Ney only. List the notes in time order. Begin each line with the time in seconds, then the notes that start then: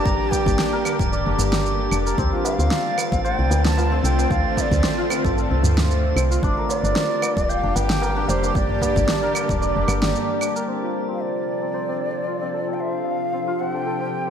0.05 A#5
0.32 G5
2.45 F5
3.25 G5
3.65 A5
4.04 G5
4.31 F5
4.57 F5
4.61 D5
6.70 D5
7.49 F5
7.76 G5
8.29 C5
8.56 D5
11.14 F5
11.21 D5
12.74 G5
12.80 E5
12.92 F5
13.60 F#5
13.72 G5